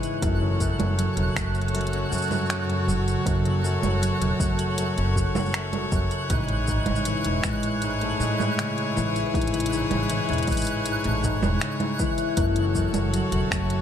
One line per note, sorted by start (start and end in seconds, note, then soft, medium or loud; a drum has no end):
0.00 0.27 G#2 medium
0.00 0.27 E3 loud
0.00 0.27 G#3 medium
0.00 0.19 E4 medium
0.00 0.19 G#4 medium
0.00 0.18 C#5 medium
0.00 13.82 F#6 medium
0.00 closed hi-hat soft
0.00 shaker soft
0.22 0.70 F#1 medium
0.22 0.59 F#2 medium
0.22 6.27 F#3 medium
0.22 6.27 F#4 medium
0.22 6.27 A4 medium
0.22 13.82 C#5 medium
0.22 kick loud
0.22 closed hi-hat medium
0.22 shaker soft
0.42 2.48 C#3 medium
0.60 1.16 F#2 medium
0.60 kick medium
0.60 closed hi-hat soft
0.60 shaker medium
0.79 1.05 F#1 medium
0.79 closed hi-hat soft
0.79 low conga medium
0.98 2.55 F#3 medium
0.98 closed hi-hat medium
0.98 shaker soft
1.17 1.30 E1 medium
1.17 1.72 F#2 medium
1.17 closed hi-hat soft
1.36 2.02 F#1 medium
1.36 4.40 A3 medium
1.36 finger snap medium
1.36 kick loud
1.36 shaker medium
1.55 closed hi-hat soft
1.55 shaker soft
1.61 closed hi-hat soft
1.68 closed hi-hat soft
1.73 2.10 F#2 medium
1.73 closed hi-hat medium
1.73 shaker soft
1.81 closed hi-hat soft
1.87 closed hi-hat soft
1.93 4.82 C#4 medium
1.93 closed hi-hat soft
2.12 2.67 F#2 medium
2.12 2.89 F#2 medium
2.12 shaker medium
2.17 shaker medium
2.22 shaker soft
2.27 shaker soft
2.31 low conga medium
2.31 shaker soft
2.36 shaker soft
2.40 shaker soft
2.46 3.43 C#3 medium
2.46 shaker soft
2.50 finger snap medium
2.50 closed hi-hat medium
2.50 shaker soft
2.69 3.25 F#2 medium
2.69 closed hi-hat soft
2.88 3.13 F#1 medium
2.88 3.50 F#3 loud
2.88 shaker medium
3.08 closed hi-hat soft
3.08 shaker soft
3.26 3.73 F#1 medium
3.26 3.62 F#2 medium
3.26 kick loud
3.26 closed hi-hat medium
3.26 shaker soft
3.45 5.72 C#3 medium
3.45 closed hi-hat soft
3.63 4.19 F#2 medium
3.63 shaker medium
3.82 4.08 F#1 medium
3.82 closed hi-hat soft
3.82 low conga medium
3.82 shaker soft
4.01 5.78 F#3 medium
4.01 closed hi-hat medium
4.01 shaker soft
4.21 4.34 E1 medium
4.21 4.77 F#2 medium
4.21 closed hi-hat soft
4.40 4.87 F#1 medium
4.40 6.36 A3 medium
4.40 kick loud
4.40 shaker medium
4.59 closed hi-hat soft
4.59 shaker soft
4.78 5.53 F#2 medium
4.78 closed hi-hat medium
4.78 shaker soft
4.97 5.23 F#1 medium
4.97 7.87 C#4 medium
4.97 closed hi-hat soft
5.16 7.59 F#4 medium
5.16 kick medium
5.16 shaker medium
5.35 5.83 F#1 medium
5.35 low conga medium
5.35 shaker soft
5.39 shaker soft
5.42 shaker soft
5.46 shaker soft
5.48 shaker soft
5.51 5.91 F#2 medium
5.51 finger snap medium
5.51 closed hi-hat medium
5.51 shaker soft
5.54 shaker soft
5.73 6.35 C#3 medium
5.73 closed hi-hat soft
5.73 low conga medium
5.92 6.05 F#1 medium
5.92 6.35 F#2 medium
5.92 kick loud
5.92 shaker medium
6.11 closed hi-hat soft
6.11 shaker soft
6.30 6.77 A1 loud
6.30 6.54 G#2 medium
6.30 12.34 E4 medium
6.30 12.34 G#4 medium
6.30 kick loud
6.30 closed hi-hat medium
6.30 shaker soft
6.48 6.73 C#3 medium
6.48 closed hi-hat soft
6.67 7.25 G#2 medium
6.67 kick medium
6.67 shaker medium
6.86 7.13 A1 medium
6.86 closed hi-hat soft
6.86 low conga medium
6.95 shaker soft
7.05 8.63 E3 medium
7.05 closed hi-hat medium
7.05 shaker soft
7.24 7.38 E1 medium
7.24 7.82 G#2 medium
7.24 closed hi-hat soft
7.44 8.10 A1 medium
7.44 8.19 G#3 medium
7.44 finger snap medium
7.44 kick medium
7.44 shaker medium
7.63 closed hi-hat soft
7.63 shaker soft
7.82 8.63 G#2 medium
7.82 closed hi-hat medium
7.82 shaker soft
8.01 8.27 A3 medium
8.01 closed hi-hat soft
8.20 8.98 A2 medium
8.20 10.47 G#3 medium
8.20 shaker medium
8.40 low conga medium
8.40 shaker soft
8.59 8.82 C#3 medium
8.59 finger snap medium
8.59 closed hi-hat medium
8.59 shaker soft
8.77 9.33 G#2 medium
8.77 closed hi-hat soft
8.96 9.22 A1 loud
8.96 9.58 E3 medium
8.96 shaker medium
9.16 closed hi-hat soft
9.16 shaker soft
9.34 9.81 A1 medium
9.34 9.58 G#2 medium
9.34 kick loud
9.34 closed hi-hat soft
9.34 shaker soft
9.42 closed hi-hat soft
9.47 closed hi-hat soft
9.53 9.77 C#3 medium
9.53 closed hi-hat soft
9.60 closed hi-hat soft
9.66 closed hi-hat soft
9.72 10.28 G#2 medium
9.72 shaker medium
9.91 10.17 A1 medium
9.91 closed hi-hat soft
9.91 low conga medium
10.10 11.67 E3 medium
10.10 closed hi-hat medium
10.10 shaker soft
10.29 10.42 E1 medium
10.29 10.85 G#2 medium
10.29 closed hi-hat soft
10.33 closed hi-hat soft
10.38 closed hi-hat soft
10.43 closed hi-hat soft
10.47 10.95 A1 medium
10.47 12.43 G#3 medium
10.47 kick medium
10.47 closed hi-hat soft
10.47 shaker soft
10.51 closed hi-hat soft
10.51 shaker soft
10.54 closed hi-hat soft
10.54 shaker soft
10.57 shaker soft
10.61 closed hi-hat soft
10.61 shaker medium
10.64 closed hi-hat soft
10.64 shaker medium
10.86 11.23 G#2 medium
10.86 closed hi-hat medium
10.86 shaker soft
11.04 11.31 A1 medium
11.04 11.30 A3 medium
11.04 closed hi-hat soft
11.24 11.67 G#2 loud
11.24 kick medium
11.24 shaker medium
11.43 11.56 E1 medium
11.43 low conga medium
11.43 shaker soft
11.61 11.86 C#3 medium
11.61 finger snap medium
11.61 closed hi-hat medium
11.61 shaker soft
11.80 12.43 G#2 medium
11.80 closed hi-hat soft
11.80 low conga medium
11.99 12.43 E3 loud
11.99 kick loud
11.99 shaker medium
12.18 closed hi-hat soft
12.18 shaker soft
12.37 12.84 F#1 medium
12.37 12.74 F#2 medium
12.37 13.82 F#3 medium
12.37 13.82 F#4 medium
12.37 13.82 A4 medium
12.37 kick loud
12.37 closed hi-hat medium
12.37 shaker soft
12.56 13.82 C#3 medium
12.56 closed hi-hat soft
12.75 13.32 F#2 medium
12.75 kick soft
12.75 shaker medium
12.93 13.19 F#1 medium
12.93 closed hi-hat soft
12.93 low conga medium
12.93 shaker soft
13.14 13.82 F#3 medium
13.14 closed hi-hat medium
13.14 shaker soft
13.32 13.45 E1 medium
13.32 13.82 F#2 medium
13.32 closed hi-hat soft
13.51 13.82 F#1 medium
13.51 13.82 A3 medium
13.51 finger snap medium
13.51 kick medium
13.51 shaker medium
13.70 closed hi-hat soft